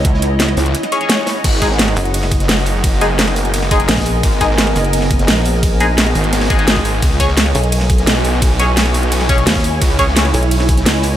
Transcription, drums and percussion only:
0.05 kick, closed hi-hat
0.14 snare
0.22 closed hi-hat
0.40 snare, closed hi-hat
0.48 snare
0.57 snare, closed hi-hat, open hi-hat
0.66 closed hi-hat
0.74 snare, closed hi-hat
0.83 snare, closed hi-hat
0.92 closed hi-hat
1.01 closed hi-hat
1.09 snare, closed hi-hat
1.26 snare, closed hi-hat, open hi-hat
1.44 kick, closed hi-hat, crash, ride
1.53 closed hi-hat
1.62 kick, closed hi-hat, ride
1.71 snare
1.78 snare, closed hi-hat, ride
1.88 snare
1.96 closed hi-hat, open hi-hat, ride
2.05 closed hi-hat
2.14 closed hi-hat, open hi-hat, ride
2.23 snare
2.32 kick, closed hi-hat, ride
2.40 snare, closed hi-hat
2.49 snare, closed hi-hat, ride
2.66 closed hi-hat, open hi-hat, ride
2.75 snare
2.84 kick, closed hi-hat, ride
3.01 closed hi-hat, ride
3.19 snare, closed hi-hat, ride
3.27 snare
3.36 snare, closed hi-hat, open hi-hat, ride
3.45 closed hi-hat
3.54 closed hi-hat, ride
3.62 snare
3.71 kick, closed hi-hat, ride
3.80 closed hi-hat
3.88 snare, closed hi-hat, ride
3.92 snare, closed hi-hat
3.97 kick, snare, closed hi-hat
4.01 snare, closed hi-hat
4.05 closed hi-hat, open hi-hat, ride
4.23 kick, closed hi-hat, ride
4.32 closed hi-hat
4.41 kick, closed hi-hat, ride
4.51 snare
4.58 snare, closed hi-hat, ride
4.67 snare
4.76 closed hi-hat, open hi-hat, ride
4.84 closed hi-hat
4.93 closed hi-hat, open hi-hat, ride
5.02 snare
5.11 kick, closed hi-hat, ride
5.19 snare, closed hi-hat
5.28 snare, closed hi-hat, ride
5.45 closed hi-hat, open hi-hat, ride
5.54 snare
5.63 kick, closed hi-hat, ride
5.80 closed hi-hat, ride
5.98 snare, closed hi-hat, ride
6.07 snare
6.15 snare, closed hi-hat, open hi-hat, ride
6.24 closed hi-hat
6.33 snare, closed hi-hat, ride
6.41 snare, closed hi-hat
6.45 snare, closed hi-hat
6.50 kick, closed hi-hat, ride
6.59 closed hi-hat
6.67 snare, closed hi-hat, ride
6.76 kick
6.85 closed hi-hat, open hi-hat, ride
7.02 kick, closed hi-hat, ride
7.12 closed hi-hat
7.20 kick, closed hi-hat, ride
7.28 snare
7.37 snare, closed hi-hat, ride
7.46 snare
7.55 closed hi-hat, open hi-hat, ride
7.64 closed hi-hat
7.72 closed hi-hat, open hi-hat, ride
7.81 snare
7.90 kick, closed hi-hat, ride
7.98 snare, closed hi-hat
8.07 snare, closed hi-hat, ride
8.25 closed hi-hat, open hi-hat, ride
8.34 snare
8.42 kick, closed hi-hat, ride
8.59 closed hi-hat, ride
8.77 snare, closed hi-hat, ride
8.86 snare
8.94 snare, closed hi-hat, open hi-hat, ride
9.03 closed hi-hat
9.12 closed hi-hat, ride
9.20 snare, closed hi-hat
9.29 kick, closed hi-hat, ride
9.38 closed hi-hat
9.46 snare, closed hi-hat, ride
9.51 snare, closed hi-hat
9.55 kick, snare, closed hi-hat
9.59 snare, closed hi-hat
9.64 closed hi-hat, open hi-hat, ride
9.81 kick, closed hi-hat, ride
9.90 closed hi-hat
9.99 kick, closed hi-hat, ride
10.08 snare
10.16 snare, closed hi-hat, ride
10.25 snare
10.34 closed hi-hat, open hi-hat, ride
10.43 closed hi-hat
10.51 closed hi-hat, open hi-hat, ride
10.60 snare
10.69 kick, closed hi-hat, ride
10.77 snare, closed hi-hat
10.86 snare, closed hi-hat, ride
11.03 closed hi-hat, open hi-hat, ride
11.12 snare

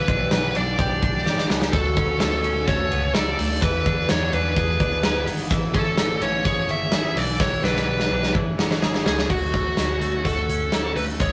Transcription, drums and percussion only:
0.08 kick, ride
0.31 snare, ride
0.55 ride
0.79 kick, ride
1.03 kick, ride
1.26 snare
1.38 snare
1.50 snare
1.62 snare
1.73 kick, ride
1.97 kick, ride
2.20 snare, ride
2.44 ride
2.68 kick, snare, ride
2.92 ride
3.15 snare, ride
3.39 open hi-hat, ride
3.62 kick, hi-hat pedal, ride
3.86 kick, ride
4.09 snare, ride
4.33 ride
4.56 kick, ride
4.80 kick, ride
5.03 snare, ride
5.27 open hi-hat, ride
5.51 kick, hi-hat pedal, ride
5.74 kick, ride
5.97 snare, ride
6.22 ride
6.45 kick, ride
6.69 ride
6.92 snare, ride
7.17 open hi-hat, ride
7.40 kick, snare
7.64 snare
7.76 snare
8.00 snare
8.23 snare
8.35 kick
8.59 snare
8.71 snare
8.82 snare
8.94 snare
9.06 snare
9.19 snare
9.30 kick, crash
9.54 kick, closed hi-hat
9.77 snare, closed hi-hat
10.01 closed hi-hat
10.25 kick, closed hi-hat
10.49 closed hi-hat
10.72 snare, closed hi-hat
10.96 open hi-hat
11.20 kick, closed hi-hat

